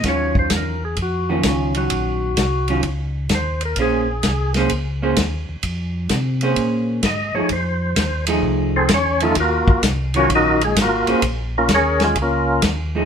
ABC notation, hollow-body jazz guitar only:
X:1
M:4/4
L:1/8
Q:"Swing" 1/4=129
K:Bbm
V:1 name="Hollow-body jazz guitar"
[E,G,DF]3 z2 [E,G,DF]2 [E,G,D]- | [E,G,D]2 z [E,G,DF] z4 | [B,DAc] z2 [B,DAc] z [B,DAc] z2 | z3 [B,DAc]3 z [F,=A,E_A] |
z3 [F,=A,E^G]3 z [E,_G,DF] | z3 [E,G,DF]3 z [B,DAc] | z6 z [F,=A,E_A] |]